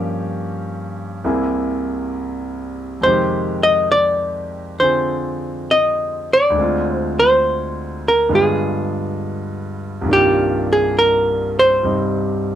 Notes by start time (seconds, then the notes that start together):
Already playing: G2 F3 A#3 C#4 G4
1.24 C2 C3 A#3 E4 G#4
3.01 F2 C3 G#3 C5
3.06 D#3 G4
3.63 D#5
3.92 D5
4.80 D3 C4 F4 G#4 C5
5.71 D#5
6.33 D5
6.50 D2 D3
6.55 G#3 C4
6.61 F4
6.95 C5
7.19 C5
8.08 A#4
8.29 G2 D3 G#3 B3 F4
8.35 G#4
10.01 C2 G2
10.06 D#3 A#3
10.10 D4 F4 G4
10.73 G#4
10.99 A#4
11.59 C5
11.83 G2 C3 G3 C4 D#4